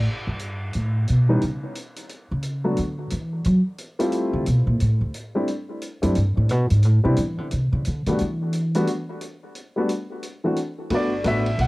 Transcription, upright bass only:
0.27 0.70 G2 medium
0.75 1.06 A2 medium
1.09 1.40 B2 medium
2.31 2.74 C#3 medium
2.79 3.09 D3 medium
3.12 3.43 E3 medium
3.46 3.58 F#3 medium
4.33 4.46 D3 medium
4.47 4.66 B2 medium
4.67 4.80 A#2 medium
4.82 5.00 A2 medium
5.01 5.09 D2 medium
6.03 6.16 F#2 medium
6.17 6.37 G2 medium
6.37 6.51 A2 medium
6.51 6.70 B2 loud
6.71 6.85 G#2 medium
6.85 7.04 A2 medium
7.05 7.17 C3 medium
7.18 7.38 E3 loud
7.38 7.51 D3 medium
7.53 7.72 C3 medium
7.73 7.85 C#3 medium
7.87 8.06 D3 medium
8.07 8.19 D#3 medium
8.21 8.84 E3 medium
10.90 11.24 G1 medium
11.24 11.58 A1 medium
11.58 11.67 B1 medium

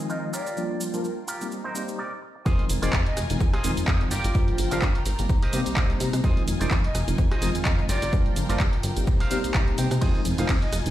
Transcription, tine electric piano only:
0.00 0.32 D#3 medium
0.00 0.32 F3 medium
0.00 0.32 G#3 medium
0.00 0.32 C4 medium
0.00 0.32 D#4 medium
0.57 0.90 F3 medium
0.57 0.91 G3 medium
0.57 0.91 A#3 medium
0.57 0.91 D4 medium
0.57 0.91 F4 medium
0.93 1.05 F3 medium
0.93 1.05 G3 medium
0.93 1.05 A#3 medium
0.93 1.06 D4 medium
0.93 1.06 F4 medium
1.41 1.61 G3 medium
1.41 1.61 A#3 medium
1.41 1.61 C4 medium
1.41 1.61 D#4 medium
1.41 1.62 G4 medium
1.74 1.98 G3 medium
1.74 1.98 A#3 medium
1.74 1.99 C4 medium
1.74 1.99 D#4 medium
1.74 1.99 G4 medium
2.46 2.79 D#3 medium
2.46 2.79 F3 medium
2.46 2.80 G#3 medium
2.46 2.80 C4 medium
2.46 2.80 D#4 loud
2.82 2.94 D#3 medium
2.82 2.94 F3 medium
2.82 2.94 G#3 medium
2.82 2.94 C4 medium
2.82 2.95 D#4 loud
3.30 3.50 D#3 medium
3.30 3.50 F3 medium
3.30 3.50 G#3 medium
3.30 3.50 C4 medium
3.30 3.50 D#4 medium
3.64 4.10 D#3 medium
3.64 4.10 F3 medium
3.64 4.10 G#3 medium
3.64 4.10 C4 medium
3.64 4.10 D#4 loud
4.35 4.68 F3 medium
4.35 4.69 G3 medium
4.35 4.69 A#3 medium
4.35 4.69 D4 medium
4.35 4.69 F4 loud
4.71 4.83 F3 medium
4.71 4.83 G3 medium
4.71 4.83 A#3 medium
4.71 4.83 D4 medium
4.71 4.84 F4 loud
5.19 5.39 G3 medium
5.19 5.39 A#3 medium
5.19 5.39 C4 medium
5.19 5.39 D#4 medium
5.19 5.39 G4 medium
5.52 6.21 G3 medium
5.52 6.21 A#3 medium
5.52 6.22 C4 medium
5.52 6.22 D#4 medium
5.52 6.22 G4 loud
6.24 6.57 D#3 medium
6.24 6.58 F3 medium
6.24 6.58 G#3 medium
6.24 6.58 C4 medium
6.24 6.58 D#4 medium
6.60 6.72 D#3 medium
6.60 6.72 F3 medium
6.60 6.72 G#3 medium
6.60 6.72 C4 medium
6.60 6.73 D#4 loud
7.08 7.28 D#3 medium
7.08 7.28 F3 medium
7.08 7.28 G#3 medium
7.08 7.28 C4 medium
7.08 7.28 D#4 medium
7.42 7.88 D#3 medium
7.42 7.88 F3 medium
7.42 7.88 G#3 medium
7.42 7.88 C4 medium
7.42 7.88 D#4 loud
8.13 8.46 F3 medium
8.13 8.46 G3 medium
8.13 8.47 A#3 medium
8.13 8.47 D4 medium
8.13 8.47 F4 loud
8.49 8.61 F3 medium
8.49 8.61 G3 medium
8.49 8.61 A#3 medium
8.49 8.61 D4 medium
8.49 8.62 F4 loud
8.96 9.17 G3 medium
8.96 9.17 A#3 medium
8.96 9.17 C4 medium
8.96 9.17 D#4 medium
8.96 9.17 G4 medium
9.30 9.99 G3 medium
9.30 9.99 A#3 medium
9.30 9.99 C4 medium
9.30 10.00 D#4 medium
9.30 10.00 G4 loud
10.02 10.35 D#3 medium
10.02 10.36 F3 medium
10.02 10.36 G#3 medium
10.02 10.36 C4 medium
10.02 10.36 D#4 loud
10.38 10.50 D#3 medium
10.38 10.50 F3 medium
10.38 10.50 G#3 medium
10.38 10.50 C4 medium
10.38 10.51 D#4 loud
10.85 10.90 D#3 medium
10.85 10.90 F3 medium
10.85 10.90 G#3 medium
10.85 10.90 C4 medium
10.85 10.90 D#4 medium

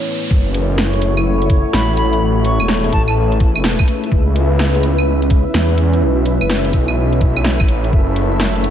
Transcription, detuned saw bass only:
0.31 1.63 F#1 loud
1.74 2.20 A1 medium
2.22 2.59 A1 medium
2.60 2.91 E1 medium
2.92 3.57 A1 medium
3.56 3.77 E1 medium
4.12 5.44 C#2 medium
5.54 6.03 E2 loud
6.02 6.39 B1 medium
6.42 6.73 F#1 medium
6.74 6.97 B1 loud
6.97 7.58 B1 medium
7.60 7.92 A1 loud
7.93 8.70 F#1 loud

